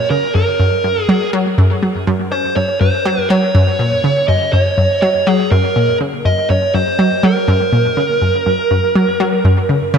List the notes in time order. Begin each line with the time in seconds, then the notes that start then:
0.10 C#3 A#4
0.35 F#2 A#4
0.60 F#2
0.84 F#2
1.01 G#4
1.09 F#3
1.33 F#3
1.58 F#2
1.82 F#3
2.07 F#2
2.32 C#4 C5
2.56 F#2 C#5
2.81 F#2 C5
3.05 F#3
3.30 F#3 C#5
3.55 F#2
3.79 A#2
4.04 C#3
4.28 F#2 D#5
4.53 F#2 C#5
4.78 F#2
5.02 F#3 C#5
5.27 F#3 G#4
5.51 F#2 A#4
5.76 A#2
6.01 C#3
6.25 F#2 D#5
6.50 F#2 C#5
6.74 F#2 C5
6.99 F#3
7.23 F#3 A#4
7.48 F#2
7.73 A#2
7.97 C#3
8.22 F#2
8.46 F#2
8.71 F#2
8.95 F#3
9.20 F#3
9.45 F#2
9.69 C#3
9.94 C#3